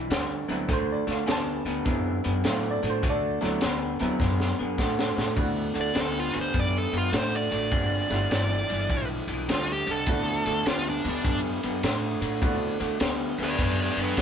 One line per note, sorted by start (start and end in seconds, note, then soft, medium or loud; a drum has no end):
0.00 0.30 B5 loud
0.10 0.42 D2 medium
0.10 0.45 G2 medium
0.10 0.46 D3 loud
0.10 snare loud
0.10 closed hi-hat medium
0.48 0.66 D2 medium
0.48 0.67 G2 medium
0.48 0.67 D3 medium
0.48 0.67 F#3 medium
0.48 0.67 B3 medium
0.48 0.68 C4 medium
0.48 0.68 E4 medium
0.48 closed hi-hat medium
0.68 1.01 D2 loud
0.68 1.03 D3 medium
0.68 1.04 A3 loud
0.68 kick loud
0.68 closed hi-hat medium
0.73 0.90 C5 loud
0.92 1.09 D5 medium
1.07 1.24 D2 medium
1.07 1.25 D3 medium
1.07 1.26 A3 medium
1.07 1.29 F5 medium
1.07 snare soft
1.07 closed hi-hat medium
1.26 1.60 D2 medium
1.26 1.62 D3 medium
1.26 1.62 B3 medium
1.26 1.31 G#5 medium
1.26 snare loud
1.26 closed hi-hat medium
1.31 2.43 A5 medium
1.65 1.82 D2 medium
1.65 1.83 D3 medium
1.65 1.84 B3 medium
1.65 closed hi-hat medium
1.85 2.18 F#2 medium
1.85 2.20 D3 medium
1.85 2.20 F#3 medium
1.85 2.21 B3 medium
1.85 2.21 C4 medium
1.85 2.22 E4 medium
1.85 kick medium
1.85 closed hi-hat medium
2.24 2.42 F#2 medium
2.24 2.43 D3 medium
2.24 2.43 B3 medium
2.24 closed hi-hat medium
2.44 2.77 A2 medium
2.44 2.79 D3 medium
2.44 3.34 F#3 medium
2.44 2.80 A3 medium
2.44 3.34 B3 medium
2.44 3.35 C4 medium
2.44 3.35 E4 medium
2.44 snare loud
2.44 closed hi-hat medium
2.49 2.66 F5 medium
2.71 2.87 D5 medium
2.83 3.00 A2 loud
2.83 3.01 D3 medium
2.83 3.01 A3 medium
2.83 closed hi-hat medium
2.90 3.06 C5 medium
3.03 3.36 D2 medium
3.03 3.38 D3 medium
3.03 3.38 A3 medium
3.03 kick loud
3.03 closed hi-hat medium
3.09 4.20 A4 loud
3.09 4.20 D5 loud
3.41 3.59 D2 medium
3.41 3.60 D3 medium
3.41 3.60 F#3 medium
3.41 3.60 A3 medium
3.41 3.60 B3 medium
3.41 3.60 C4 medium
3.41 3.60 E4 medium
3.41 snare soft
3.41 closed hi-hat medium
3.61 3.94 D2 medium
3.61 3.97 D3 medium
3.61 3.97 B3 medium
3.61 snare loud
3.61 closed hi-hat medium
3.99 4.18 D2 loud
3.99 4.19 D3 medium
3.99 4.19 F#3 medium
3.99 4.19 B3 medium
3.99 4.19 C4 medium
3.99 4.19 E4 medium
3.99 closed hi-hat medium
4.20 4.52 F#2 medium
4.20 4.55 D3 medium
4.20 4.56 B3 medium
4.20 kick medium
4.20 snare medium
4.40 snare medium
4.59 4.76 F#2 medium
4.59 4.77 D3 medium
4.59 4.78 B3 medium
4.78 5.11 A2 medium
4.78 5.13 D3 medium
4.78 5.14 A3 loud
4.78 kick medium
4.78 snare medium
4.99 snare medium
5.16 5.34 A2 medium
5.16 5.35 D3 medium
5.16 5.35 A3 medium
5.16 snare medium
5.36 5.70 D2 medium
5.36 5.72 D3 medium
5.36 5.72 A3 medium
5.36 7.01 B3 medium
5.36 7.01 C4 medium
5.36 7.02 D4 medium
5.36 7.02 E4 medium
5.36 7.02 F#4 medium
5.36 kick loud
5.36 ride medium
5.74 5.93 D2 medium
5.74 5.92 D3 medium
5.74 5.94 A3 medium
5.74 ride medium
5.81 5.98 D5 loud
5.94 6.28 D2 medium
5.94 6.30 D3 medium
5.94 6.30 B3 medium
5.94 snare loud
5.94 ride medium
6.00 6.18 A4 medium
6.20 6.37 F4 medium
6.33 6.52 D2 medium
6.33 6.52 D3 medium
6.33 6.52 B3 medium
6.33 ride medium
6.41 6.59 C5 medium
6.54 6.87 F#2 medium
6.54 6.89 D3 medium
6.54 6.89 B3 medium
6.54 kick loud
6.54 ride medium
6.59 6.77 D5 medium
6.78 6.96 A4 medium
6.92 7.10 F#2 medium
6.92 7.10 D3 medium
6.92 7.12 B3 medium
6.92 ride medium
6.97 7.15 F4 medium
7.11 7.46 A2 medium
7.11 7.47 D3 medium
7.11 7.48 A3 medium
7.11 snare loud
7.11 ride medium
7.18 7.35 C5 medium
7.37 9.07 D5 medium
7.51 7.69 A1 medium
7.51 7.70 D3 medium
7.51 7.70 A3 medium
7.51 ride medium
7.71 8.04 G1 medium
7.71 8.07 G2 medium
7.71 8.07 D3 medium
7.71 8.07 A#3 medium
7.71 8.07 C4 medium
7.71 8.07 F4 medium
7.71 8.07 F#4 medium
7.71 8.08 G#4 medium
7.71 kick loud
7.71 ride medium
8.09 8.27 G1 medium
8.09 8.29 G2 medium
8.09 8.30 D3 medium
8.09 9.36 A3 medium
8.09 9.36 B3 medium
8.09 9.36 E4 medium
8.09 9.36 F4 medium
8.09 9.37 G4 medium
8.09 snare soft
8.09 ride medium
8.31 8.63 G1 medium
8.31 8.66 G2 medium
8.31 8.66 E3 medium
8.31 snare loud
8.31 ride medium
8.69 8.87 G1 medium
8.69 8.88 G2 medium
8.69 8.88 E3 medium
8.69 ride medium
8.89 9.22 B1 medium
8.89 9.24 G2 medium
8.89 9.24 E3 medium
8.89 kick loud
8.89 ride medium
9.27 9.45 B1 medium
9.27 9.47 G2 medium
9.27 9.47 E3 medium
9.27 ride medium
9.48 9.81 D2 medium
9.48 9.83 G2 medium
9.48 9.84 D3 medium
9.48 snare loud
9.48 ride medium
9.54 9.70 F4 medium
9.72 9.91 G4 medium
9.86 10.04 C2 medium
9.86 10.05 G2 medium
9.86 10.05 D3 medium
9.86 ride medium
9.91 10.65 A4 loud
10.06 10.40 D2 medium
10.06 10.42 D3 medium
10.06 10.42 A3 loud
10.06 10.97 B3 medium
10.06 10.97 C4 medium
10.06 10.97 D4 medium
10.06 10.98 E4 medium
10.06 10.98 F#4 medium
10.06 kick loud
10.06 ride medium
10.45 10.63 D2 medium
10.45 10.64 D3 medium
10.45 10.65 A3 medium
10.45 ride medium
10.66 10.98 D2 medium
10.66 11.01 D3 medium
10.66 11.01 B3 medium
10.66 snare loud
10.66 ride medium
10.70 10.87 F4 medium
10.90 11.07 D4 medium
11.04 11.21 D2 loud
11.04 11.23 D3 medium
11.04 11.23 B3 medium
11.04 ride medium
11.09 11.39 D4 medium
11.24 11.57 F#2 medium
11.24 11.59 D3 medium
11.24 11.60 B3 medium
11.24 kick loud
11.24 ride medium
11.63 11.81 F#2 medium
11.63 11.81 D3 medium
11.63 11.82 B3 medium
11.63 ride medium
11.83 12.16 A2 loud
11.83 12.18 D3 medium
11.83 12.18 A3 loud
11.83 snare loud
11.83 ride medium
12.21 12.38 A2 medium
12.21 12.40 D3 medium
12.21 12.40 A3 medium
12.21 ride medium
12.41 12.74 D2 medium
12.41 12.76 D3 medium
12.41 12.77 A3 medium
12.41 14.06 B3 medium
12.41 14.06 C4 medium
12.41 14.06 D4 medium
12.41 14.06 E4 medium
12.41 14.06 F#4 medium
12.41 kick loud
12.41 ride medium
12.80 12.97 D2 medium
12.80 12.98 D3 medium
12.80 12.99 A3 medium
12.80 ride medium
13.00 13.33 D2 medium
13.00 13.35 D3 medium
13.00 13.35 B3 medium
13.00 snare loud
13.00 ride medium
13.38 13.56 D2 medium
13.38 13.57 D3 medium
13.38 13.57 B3 medium
13.38 ride medium
13.43 13.61 B4 medium
13.43 13.61 D5 medium
13.58 13.91 F#2 medium
13.58 13.93 D3 medium
13.58 13.94 B3 medium
13.58 kick medium
13.58 ride medium
13.63 13.80 B4 medium
13.63 13.81 D5 medium
13.82 13.99 B4 medium
13.82 14.00 D5 medium
13.97 14.14 F#2 medium
13.97 14.16 D3 medium
13.97 14.16 B3 medium
13.97 ride medium
14.01 14.18 D4 medium
14.01 14.19 B4 medium
14.17 14.22 A2 medium
14.17 14.22 D3 medium
14.17 14.22 A3 loud
14.17 kick medium
14.17 snare loud
14.17 ride medium